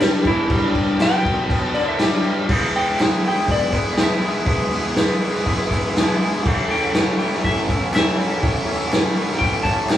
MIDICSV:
0, 0, Header, 1, 5, 480
1, 0, Start_track
1, 0, Tempo, 493827
1, 503, Time_signature, 4, 2, 24, 8
1, 9696, End_track
2, 0, Start_track
2, 0, Title_t, "Electric slide guitar"
2, 0, Program_c, 0, 29
2, 19, Note_on_c, 0, 67, 90
2, 254, Note_off_c, 0, 67, 0
2, 261, Note_on_c, 0, 64, 112
2, 730, Note_off_c, 0, 64, 0
2, 990, Note_on_c, 0, 79, 114
2, 1689, Note_off_c, 0, 79, 0
2, 1694, Note_on_c, 0, 74, 98
2, 1818, Note_off_c, 0, 74, 0
2, 1833, Note_on_c, 0, 76, 95
2, 1948, Note_off_c, 0, 76, 0
2, 1970, Note_on_c, 0, 76, 100
2, 2427, Note_off_c, 0, 76, 0
2, 2683, Note_on_c, 0, 79, 96
2, 3144, Note_off_c, 0, 79, 0
2, 3188, Note_on_c, 0, 79, 83
2, 3404, Note_off_c, 0, 79, 0
2, 3415, Note_on_c, 0, 74, 99
2, 3870, Note_off_c, 0, 74, 0
2, 3921, Note_on_c, 0, 76, 97
2, 4828, Note_off_c, 0, 76, 0
2, 6517, Note_on_c, 0, 79, 101
2, 6973, Note_off_c, 0, 79, 0
2, 6985, Note_on_c, 0, 79, 80
2, 7219, Note_off_c, 0, 79, 0
2, 7238, Note_on_c, 0, 76, 98
2, 7697, Note_off_c, 0, 76, 0
2, 7726, Note_on_c, 0, 76, 105
2, 8645, Note_off_c, 0, 76, 0
2, 9121, Note_on_c, 0, 79, 94
2, 9362, Note_on_c, 0, 81, 89
2, 9363, Note_off_c, 0, 79, 0
2, 9604, Note_off_c, 0, 81, 0
2, 9696, End_track
3, 0, Start_track
3, 0, Title_t, "Transistor combo organ"
3, 0, Program_c, 1, 18
3, 0, Note_on_c, 1, 64, 63
3, 0, Note_on_c, 1, 71, 57
3, 0, Note_on_c, 1, 73, 72
3, 2392, Note_off_c, 1, 64, 0
3, 2396, Note_off_c, 1, 71, 0
3, 2400, Note_off_c, 1, 73, 0
3, 2444, Note_on_c, 1, 64, 63
3, 2446, Note_on_c, 1, 68, 57
3, 2461, Note_on_c, 1, 71, 70
3, 6238, Note_off_c, 1, 64, 0
3, 6239, Note_off_c, 1, 68, 0
3, 6247, Note_off_c, 1, 71, 0
3, 6293, Note_on_c, 1, 69, 71
3, 6299, Note_on_c, 1, 73, 80
3, 6300, Note_on_c, 1, 64, 73
3, 9696, Note_off_c, 1, 64, 0
3, 9696, Note_off_c, 1, 69, 0
3, 9696, Note_off_c, 1, 73, 0
3, 9696, End_track
4, 0, Start_track
4, 0, Title_t, "Overdriven electric guitar"
4, 0, Program_c, 2, 29
4, 0, Note_on_c, 2, 43, 92
4, 0, Note_on_c, 2, 55, 95
4, 237, Note_off_c, 2, 43, 0
4, 246, Note_off_c, 2, 55, 0
4, 256, Note_on_c, 2, 40, 91
4, 270, Note_on_c, 2, 52, 107
4, 483, Note_off_c, 2, 40, 0
4, 486, Note_on_c, 2, 43, 97
4, 496, Note_off_c, 2, 52, 0
4, 500, Note_on_c, 2, 55, 106
4, 970, Note_off_c, 2, 43, 0
4, 975, Note_on_c, 2, 47, 91
4, 977, Note_off_c, 2, 55, 0
4, 989, Note_on_c, 2, 59, 105
4, 1696, Note_off_c, 2, 47, 0
4, 1703, Note_off_c, 2, 59, 0
4, 1704, Note_on_c, 2, 50, 90
4, 1713, Note_on_c, 2, 62, 109
4, 1939, Note_on_c, 2, 43, 90
4, 1940, Note_off_c, 2, 50, 0
4, 1944, Note_off_c, 2, 62, 0
4, 1945, Note_on_c, 2, 55, 98
4, 2418, Note_off_c, 2, 43, 0
4, 2419, Note_on_c, 2, 52, 109
4, 2421, Note_off_c, 2, 55, 0
4, 2425, Note_on_c, 2, 56, 101
4, 2434, Note_on_c, 2, 64, 106
4, 2435, Note_on_c, 2, 59, 113
4, 2657, Note_off_c, 2, 52, 0
4, 2661, Note_on_c, 2, 52, 78
4, 2662, Note_off_c, 2, 56, 0
4, 2666, Note_on_c, 2, 56, 85
4, 2677, Note_off_c, 2, 59, 0
4, 2680, Note_on_c, 2, 59, 87
4, 2689, Note_off_c, 2, 64, 0
4, 2693, Note_on_c, 2, 64, 94
4, 2901, Note_off_c, 2, 52, 0
4, 2905, Note_on_c, 2, 52, 88
4, 2912, Note_off_c, 2, 56, 0
4, 2916, Note_on_c, 2, 56, 93
4, 2920, Note_off_c, 2, 59, 0
4, 2923, Note_on_c, 2, 59, 103
4, 2928, Note_off_c, 2, 64, 0
4, 2931, Note_on_c, 2, 64, 105
4, 3144, Note_off_c, 2, 52, 0
4, 3148, Note_off_c, 2, 56, 0
4, 3148, Note_on_c, 2, 52, 88
4, 3152, Note_on_c, 2, 56, 85
4, 3160, Note_off_c, 2, 59, 0
4, 3164, Note_on_c, 2, 59, 87
4, 3170, Note_off_c, 2, 64, 0
4, 3174, Note_on_c, 2, 64, 92
4, 3372, Note_off_c, 2, 52, 0
4, 3373, Note_off_c, 2, 56, 0
4, 3376, Note_on_c, 2, 52, 98
4, 3381, Note_off_c, 2, 59, 0
4, 3385, Note_on_c, 2, 56, 102
4, 3392, Note_on_c, 2, 59, 107
4, 3396, Note_off_c, 2, 64, 0
4, 3400, Note_on_c, 2, 64, 111
4, 3599, Note_off_c, 2, 52, 0
4, 3600, Note_off_c, 2, 56, 0
4, 3602, Note_on_c, 2, 52, 77
4, 3608, Note_off_c, 2, 59, 0
4, 3612, Note_on_c, 2, 56, 94
4, 3620, Note_on_c, 2, 59, 90
4, 3623, Note_off_c, 2, 64, 0
4, 3627, Note_on_c, 2, 64, 106
4, 3846, Note_off_c, 2, 56, 0
4, 3848, Note_off_c, 2, 52, 0
4, 3852, Note_on_c, 2, 52, 102
4, 3858, Note_on_c, 2, 56, 95
4, 3859, Note_off_c, 2, 59, 0
4, 3871, Note_on_c, 2, 59, 98
4, 3875, Note_off_c, 2, 64, 0
4, 3879, Note_on_c, 2, 64, 106
4, 4100, Note_off_c, 2, 52, 0
4, 4104, Note_on_c, 2, 52, 88
4, 4108, Note_off_c, 2, 56, 0
4, 4109, Note_off_c, 2, 59, 0
4, 4118, Note_off_c, 2, 64, 0
4, 4119, Note_on_c, 2, 56, 96
4, 4121, Note_on_c, 2, 59, 90
4, 4122, Note_on_c, 2, 64, 92
4, 4332, Note_off_c, 2, 52, 0
4, 4336, Note_on_c, 2, 52, 105
4, 4337, Note_off_c, 2, 56, 0
4, 4347, Note_off_c, 2, 59, 0
4, 4349, Note_on_c, 2, 56, 110
4, 4358, Note_off_c, 2, 64, 0
4, 4358, Note_on_c, 2, 59, 108
4, 4361, Note_on_c, 2, 64, 105
4, 4582, Note_off_c, 2, 59, 0
4, 4586, Note_off_c, 2, 52, 0
4, 4586, Note_off_c, 2, 56, 0
4, 4590, Note_on_c, 2, 52, 86
4, 4594, Note_on_c, 2, 59, 88
4, 4598, Note_on_c, 2, 56, 81
4, 4607, Note_off_c, 2, 64, 0
4, 4611, Note_on_c, 2, 64, 89
4, 4819, Note_off_c, 2, 56, 0
4, 4821, Note_off_c, 2, 52, 0
4, 4825, Note_on_c, 2, 52, 86
4, 4830, Note_on_c, 2, 56, 92
4, 4832, Note_off_c, 2, 59, 0
4, 4844, Note_on_c, 2, 59, 100
4, 4848, Note_off_c, 2, 64, 0
4, 4852, Note_on_c, 2, 64, 103
4, 5065, Note_off_c, 2, 52, 0
4, 5068, Note_off_c, 2, 56, 0
4, 5068, Note_on_c, 2, 52, 86
4, 5078, Note_off_c, 2, 59, 0
4, 5079, Note_on_c, 2, 56, 89
4, 5084, Note_off_c, 2, 64, 0
4, 5088, Note_on_c, 2, 64, 91
4, 5089, Note_on_c, 2, 59, 94
4, 5295, Note_off_c, 2, 52, 0
4, 5299, Note_off_c, 2, 56, 0
4, 5299, Note_on_c, 2, 52, 98
4, 5301, Note_off_c, 2, 59, 0
4, 5311, Note_on_c, 2, 56, 104
4, 5313, Note_on_c, 2, 59, 97
4, 5320, Note_off_c, 2, 64, 0
4, 5324, Note_on_c, 2, 64, 104
4, 5525, Note_off_c, 2, 52, 0
4, 5527, Note_off_c, 2, 56, 0
4, 5529, Note_on_c, 2, 52, 82
4, 5536, Note_off_c, 2, 59, 0
4, 5539, Note_on_c, 2, 56, 86
4, 5548, Note_on_c, 2, 59, 90
4, 5556, Note_off_c, 2, 64, 0
4, 5560, Note_on_c, 2, 64, 98
4, 5752, Note_off_c, 2, 52, 0
4, 5756, Note_on_c, 2, 52, 94
4, 5760, Note_off_c, 2, 56, 0
4, 5764, Note_off_c, 2, 59, 0
4, 5772, Note_on_c, 2, 56, 101
4, 5776, Note_on_c, 2, 59, 108
4, 5781, Note_off_c, 2, 64, 0
4, 5785, Note_on_c, 2, 64, 109
4, 5997, Note_off_c, 2, 52, 0
4, 5999, Note_off_c, 2, 56, 0
4, 6001, Note_on_c, 2, 52, 86
4, 6007, Note_off_c, 2, 59, 0
4, 6011, Note_on_c, 2, 56, 98
4, 6018, Note_on_c, 2, 59, 87
4, 6026, Note_off_c, 2, 64, 0
4, 6030, Note_on_c, 2, 64, 102
4, 6245, Note_off_c, 2, 52, 0
4, 6246, Note_off_c, 2, 56, 0
4, 6248, Note_on_c, 2, 45, 94
4, 6249, Note_on_c, 2, 52, 109
4, 6250, Note_off_c, 2, 59, 0
4, 6257, Note_on_c, 2, 57, 107
4, 6262, Note_on_c, 2, 61, 115
4, 6265, Note_off_c, 2, 64, 0
4, 6269, Note_on_c, 2, 64, 122
4, 6496, Note_off_c, 2, 45, 0
4, 6500, Note_on_c, 2, 45, 82
4, 6505, Note_off_c, 2, 52, 0
4, 6508, Note_off_c, 2, 57, 0
4, 6509, Note_on_c, 2, 52, 88
4, 6512, Note_on_c, 2, 57, 82
4, 6520, Note_off_c, 2, 64, 0
4, 6521, Note_off_c, 2, 61, 0
4, 6524, Note_on_c, 2, 64, 99
4, 6525, Note_on_c, 2, 61, 97
4, 6736, Note_off_c, 2, 45, 0
4, 6740, Note_on_c, 2, 45, 92
4, 6745, Note_off_c, 2, 52, 0
4, 6749, Note_on_c, 2, 52, 90
4, 6753, Note_off_c, 2, 57, 0
4, 6757, Note_on_c, 2, 57, 98
4, 6759, Note_off_c, 2, 61, 0
4, 6763, Note_on_c, 2, 61, 110
4, 6769, Note_off_c, 2, 64, 0
4, 6773, Note_on_c, 2, 64, 110
4, 6979, Note_off_c, 2, 45, 0
4, 6983, Note_on_c, 2, 45, 88
4, 6986, Note_off_c, 2, 52, 0
4, 6986, Note_off_c, 2, 57, 0
4, 6989, Note_on_c, 2, 57, 91
4, 6990, Note_on_c, 2, 52, 90
4, 7002, Note_off_c, 2, 61, 0
4, 7005, Note_on_c, 2, 61, 91
4, 7006, Note_off_c, 2, 64, 0
4, 7010, Note_on_c, 2, 64, 100
4, 7215, Note_off_c, 2, 45, 0
4, 7226, Note_off_c, 2, 57, 0
4, 7227, Note_on_c, 2, 45, 99
4, 7229, Note_off_c, 2, 52, 0
4, 7233, Note_on_c, 2, 52, 110
4, 7235, Note_off_c, 2, 61, 0
4, 7238, Note_on_c, 2, 57, 102
4, 7247, Note_on_c, 2, 61, 102
4, 7252, Note_off_c, 2, 64, 0
4, 7256, Note_on_c, 2, 64, 119
4, 7452, Note_off_c, 2, 45, 0
4, 7463, Note_on_c, 2, 45, 85
4, 7466, Note_off_c, 2, 57, 0
4, 7467, Note_off_c, 2, 52, 0
4, 7470, Note_off_c, 2, 61, 0
4, 7471, Note_on_c, 2, 52, 89
4, 7477, Note_on_c, 2, 57, 91
4, 7482, Note_on_c, 2, 61, 92
4, 7486, Note_off_c, 2, 64, 0
4, 7490, Note_on_c, 2, 64, 98
4, 7691, Note_off_c, 2, 45, 0
4, 7702, Note_on_c, 2, 45, 87
4, 7705, Note_off_c, 2, 52, 0
4, 7705, Note_off_c, 2, 57, 0
4, 7705, Note_off_c, 2, 61, 0
4, 7708, Note_on_c, 2, 52, 93
4, 7717, Note_on_c, 2, 57, 102
4, 7717, Note_on_c, 2, 61, 108
4, 7730, Note_off_c, 2, 64, 0
4, 7734, Note_on_c, 2, 64, 99
4, 7919, Note_off_c, 2, 45, 0
4, 7931, Note_on_c, 2, 45, 92
4, 7939, Note_off_c, 2, 52, 0
4, 7941, Note_off_c, 2, 57, 0
4, 7942, Note_off_c, 2, 61, 0
4, 7943, Note_on_c, 2, 52, 87
4, 7952, Note_off_c, 2, 64, 0
4, 7952, Note_on_c, 2, 57, 86
4, 7954, Note_on_c, 2, 61, 98
4, 7956, Note_on_c, 2, 64, 100
4, 8158, Note_off_c, 2, 45, 0
4, 8169, Note_on_c, 2, 45, 95
4, 8179, Note_off_c, 2, 57, 0
4, 8181, Note_off_c, 2, 52, 0
4, 8184, Note_off_c, 2, 61, 0
4, 8185, Note_on_c, 2, 52, 110
4, 8191, Note_on_c, 2, 57, 109
4, 8196, Note_on_c, 2, 61, 111
4, 8203, Note_off_c, 2, 64, 0
4, 8207, Note_on_c, 2, 64, 119
4, 8385, Note_off_c, 2, 45, 0
4, 8397, Note_on_c, 2, 45, 78
4, 8401, Note_off_c, 2, 57, 0
4, 8403, Note_off_c, 2, 52, 0
4, 8407, Note_on_c, 2, 52, 81
4, 8412, Note_off_c, 2, 61, 0
4, 8413, Note_on_c, 2, 57, 86
4, 8423, Note_off_c, 2, 64, 0
4, 8424, Note_on_c, 2, 61, 86
4, 8427, Note_on_c, 2, 64, 85
4, 8624, Note_off_c, 2, 45, 0
4, 8636, Note_on_c, 2, 45, 92
4, 8640, Note_off_c, 2, 57, 0
4, 8646, Note_off_c, 2, 52, 0
4, 8650, Note_on_c, 2, 52, 101
4, 8652, Note_off_c, 2, 61, 0
4, 8652, Note_on_c, 2, 57, 93
4, 8661, Note_off_c, 2, 64, 0
4, 8664, Note_on_c, 2, 61, 102
4, 8665, Note_on_c, 2, 64, 103
4, 8860, Note_off_c, 2, 45, 0
4, 8871, Note_off_c, 2, 57, 0
4, 8872, Note_on_c, 2, 45, 80
4, 8878, Note_off_c, 2, 52, 0
4, 8879, Note_off_c, 2, 61, 0
4, 8882, Note_on_c, 2, 52, 90
4, 8882, Note_on_c, 2, 57, 87
4, 8890, Note_on_c, 2, 61, 92
4, 8900, Note_off_c, 2, 64, 0
4, 8904, Note_on_c, 2, 64, 98
4, 9102, Note_off_c, 2, 45, 0
4, 9110, Note_off_c, 2, 57, 0
4, 9114, Note_on_c, 2, 45, 106
4, 9117, Note_off_c, 2, 61, 0
4, 9118, Note_off_c, 2, 52, 0
4, 9122, Note_on_c, 2, 52, 110
4, 9122, Note_on_c, 2, 57, 102
4, 9128, Note_on_c, 2, 61, 103
4, 9137, Note_off_c, 2, 64, 0
4, 9141, Note_on_c, 2, 64, 105
4, 9341, Note_off_c, 2, 45, 0
4, 9348, Note_off_c, 2, 57, 0
4, 9353, Note_on_c, 2, 45, 88
4, 9355, Note_off_c, 2, 52, 0
4, 9355, Note_off_c, 2, 61, 0
4, 9359, Note_on_c, 2, 52, 82
4, 9359, Note_on_c, 2, 57, 88
4, 9367, Note_on_c, 2, 61, 83
4, 9369, Note_off_c, 2, 64, 0
4, 9372, Note_on_c, 2, 64, 89
4, 9583, Note_off_c, 2, 45, 0
4, 9595, Note_on_c, 2, 45, 99
4, 9603, Note_off_c, 2, 52, 0
4, 9603, Note_off_c, 2, 57, 0
4, 9607, Note_on_c, 2, 52, 98
4, 9609, Note_off_c, 2, 61, 0
4, 9614, Note_on_c, 2, 57, 102
4, 9621, Note_on_c, 2, 61, 108
4, 9630, Note_off_c, 2, 64, 0
4, 9634, Note_on_c, 2, 64, 115
4, 9696, Note_off_c, 2, 45, 0
4, 9696, Note_off_c, 2, 52, 0
4, 9696, Note_off_c, 2, 57, 0
4, 9696, Note_off_c, 2, 61, 0
4, 9696, Note_off_c, 2, 64, 0
4, 9696, End_track
5, 0, Start_track
5, 0, Title_t, "Drums"
5, 3, Note_on_c, 9, 49, 80
5, 7, Note_on_c, 9, 38, 105
5, 13, Note_on_c, 9, 39, 95
5, 101, Note_off_c, 9, 49, 0
5, 104, Note_off_c, 9, 38, 0
5, 110, Note_off_c, 9, 39, 0
5, 242, Note_on_c, 9, 49, 64
5, 244, Note_on_c, 9, 36, 84
5, 339, Note_off_c, 9, 49, 0
5, 342, Note_off_c, 9, 36, 0
5, 483, Note_on_c, 9, 49, 81
5, 487, Note_on_c, 9, 36, 117
5, 580, Note_off_c, 9, 49, 0
5, 584, Note_off_c, 9, 36, 0
5, 729, Note_on_c, 9, 36, 89
5, 730, Note_on_c, 9, 49, 65
5, 827, Note_off_c, 9, 36, 0
5, 827, Note_off_c, 9, 49, 0
5, 970, Note_on_c, 9, 49, 82
5, 974, Note_on_c, 9, 38, 107
5, 976, Note_on_c, 9, 39, 98
5, 1067, Note_off_c, 9, 49, 0
5, 1071, Note_off_c, 9, 38, 0
5, 1073, Note_off_c, 9, 39, 0
5, 1217, Note_on_c, 9, 36, 91
5, 1226, Note_on_c, 9, 49, 67
5, 1314, Note_off_c, 9, 36, 0
5, 1323, Note_off_c, 9, 49, 0
5, 1458, Note_on_c, 9, 36, 113
5, 1465, Note_on_c, 9, 49, 80
5, 1555, Note_off_c, 9, 36, 0
5, 1562, Note_off_c, 9, 49, 0
5, 1698, Note_on_c, 9, 49, 60
5, 1796, Note_off_c, 9, 49, 0
5, 1933, Note_on_c, 9, 49, 85
5, 1937, Note_on_c, 9, 38, 121
5, 1950, Note_on_c, 9, 39, 94
5, 2031, Note_off_c, 9, 49, 0
5, 2034, Note_off_c, 9, 38, 0
5, 2047, Note_off_c, 9, 39, 0
5, 2176, Note_on_c, 9, 49, 59
5, 2273, Note_off_c, 9, 49, 0
5, 2420, Note_on_c, 9, 57, 120
5, 2423, Note_on_c, 9, 36, 116
5, 2518, Note_off_c, 9, 57, 0
5, 2520, Note_off_c, 9, 36, 0
5, 2671, Note_on_c, 9, 46, 60
5, 2769, Note_off_c, 9, 46, 0
5, 2908, Note_on_c, 9, 39, 102
5, 2913, Note_on_c, 9, 46, 79
5, 2917, Note_on_c, 9, 38, 111
5, 3005, Note_off_c, 9, 39, 0
5, 3011, Note_off_c, 9, 46, 0
5, 3015, Note_off_c, 9, 38, 0
5, 3155, Note_on_c, 9, 46, 68
5, 3252, Note_off_c, 9, 46, 0
5, 3381, Note_on_c, 9, 46, 86
5, 3384, Note_on_c, 9, 36, 93
5, 3478, Note_off_c, 9, 46, 0
5, 3481, Note_off_c, 9, 36, 0
5, 3621, Note_on_c, 9, 46, 64
5, 3624, Note_on_c, 9, 36, 82
5, 3640, Note_on_c, 9, 39, 75
5, 3718, Note_off_c, 9, 46, 0
5, 3721, Note_off_c, 9, 36, 0
5, 3737, Note_off_c, 9, 39, 0
5, 3856, Note_on_c, 9, 46, 85
5, 3860, Note_on_c, 9, 38, 114
5, 3883, Note_on_c, 9, 39, 105
5, 3953, Note_off_c, 9, 46, 0
5, 3957, Note_off_c, 9, 38, 0
5, 3980, Note_off_c, 9, 39, 0
5, 4098, Note_on_c, 9, 46, 65
5, 4196, Note_off_c, 9, 46, 0
5, 4326, Note_on_c, 9, 46, 87
5, 4339, Note_on_c, 9, 36, 116
5, 4423, Note_off_c, 9, 46, 0
5, 4437, Note_off_c, 9, 36, 0
5, 4575, Note_on_c, 9, 46, 66
5, 4672, Note_off_c, 9, 46, 0
5, 4819, Note_on_c, 9, 46, 89
5, 4823, Note_on_c, 9, 38, 107
5, 4844, Note_on_c, 9, 39, 103
5, 4916, Note_off_c, 9, 46, 0
5, 4920, Note_off_c, 9, 38, 0
5, 4941, Note_off_c, 9, 39, 0
5, 5064, Note_on_c, 9, 46, 69
5, 5161, Note_off_c, 9, 46, 0
5, 5198, Note_on_c, 9, 38, 32
5, 5295, Note_off_c, 9, 38, 0
5, 5311, Note_on_c, 9, 36, 89
5, 5316, Note_on_c, 9, 46, 92
5, 5408, Note_off_c, 9, 36, 0
5, 5413, Note_off_c, 9, 46, 0
5, 5549, Note_on_c, 9, 36, 86
5, 5552, Note_on_c, 9, 46, 62
5, 5572, Note_on_c, 9, 39, 75
5, 5646, Note_off_c, 9, 36, 0
5, 5650, Note_off_c, 9, 46, 0
5, 5670, Note_off_c, 9, 39, 0
5, 5795, Note_on_c, 9, 46, 85
5, 5799, Note_on_c, 9, 38, 115
5, 5816, Note_on_c, 9, 39, 99
5, 5892, Note_off_c, 9, 46, 0
5, 5896, Note_off_c, 9, 38, 0
5, 5913, Note_off_c, 9, 39, 0
5, 6044, Note_on_c, 9, 46, 66
5, 6141, Note_off_c, 9, 46, 0
5, 6276, Note_on_c, 9, 36, 116
5, 6279, Note_on_c, 9, 57, 101
5, 6373, Note_off_c, 9, 36, 0
5, 6376, Note_off_c, 9, 57, 0
5, 6522, Note_on_c, 9, 46, 66
5, 6619, Note_off_c, 9, 46, 0
5, 6747, Note_on_c, 9, 46, 79
5, 6751, Note_on_c, 9, 38, 111
5, 6764, Note_on_c, 9, 39, 97
5, 6845, Note_off_c, 9, 46, 0
5, 6848, Note_off_c, 9, 38, 0
5, 6861, Note_off_c, 9, 39, 0
5, 6997, Note_on_c, 9, 46, 65
5, 7094, Note_off_c, 9, 46, 0
5, 7120, Note_on_c, 9, 38, 34
5, 7217, Note_off_c, 9, 38, 0
5, 7236, Note_on_c, 9, 36, 85
5, 7245, Note_on_c, 9, 46, 85
5, 7333, Note_off_c, 9, 36, 0
5, 7343, Note_off_c, 9, 46, 0
5, 7476, Note_on_c, 9, 36, 92
5, 7480, Note_on_c, 9, 46, 60
5, 7489, Note_on_c, 9, 39, 68
5, 7573, Note_off_c, 9, 36, 0
5, 7578, Note_off_c, 9, 46, 0
5, 7586, Note_off_c, 9, 39, 0
5, 7716, Note_on_c, 9, 39, 106
5, 7730, Note_on_c, 9, 46, 80
5, 7734, Note_on_c, 9, 38, 110
5, 7814, Note_off_c, 9, 39, 0
5, 7827, Note_off_c, 9, 46, 0
5, 7831, Note_off_c, 9, 38, 0
5, 7971, Note_on_c, 9, 46, 67
5, 8068, Note_off_c, 9, 46, 0
5, 8194, Note_on_c, 9, 36, 114
5, 8201, Note_on_c, 9, 46, 87
5, 8291, Note_off_c, 9, 36, 0
5, 8298, Note_off_c, 9, 46, 0
5, 8438, Note_on_c, 9, 46, 68
5, 8536, Note_off_c, 9, 46, 0
5, 8673, Note_on_c, 9, 46, 84
5, 8675, Note_on_c, 9, 39, 105
5, 8677, Note_on_c, 9, 38, 106
5, 8770, Note_off_c, 9, 46, 0
5, 8772, Note_off_c, 9, 39, 0
5, 8774, Note_off_c, 9, 38, 0
5, 8913, Note_on_c, 9, 46, 70
5, 9010, Note_off_c, 9, 46, 0
5, 9041, Note_on_c, 9, 38, 35
5, 9138, Note_off_c, 9, 38, 0
5, 9146, Note_on_c, 9, 36, 91
5, 9161, Note_on_c, 9, 46, 90
5, 9243, Note_off_c, 9, 36, 0
5, 9258, Note_off_c, 9, 46, 0
5, 9379, Note_on_c, 9, 36, 83
5, 9386, Note_on_c, 9, 39, 79
5, 9392, Note_on_c, 9, 46, 64
5, 9477, Note_off_c, 9, 36, 0
5, 9484, Note_off_c, 9, 39, 0
5, 9489, Note_off_c, 9, 46, 0
5, 9616, Note_on_c, 9, 39, 106
5, 9621, Note_on_c, 9, 46, 84
5, 9625, Note_on_c, 9, 38, 112
5, 9696, Note_off_c, 9, 38, 0
5, 9696, Note_off_c, 9, 39, 0
5, 9696, Note_off_c, 9, 46, 0
5, 9696, End_track
0, 0, End_of_file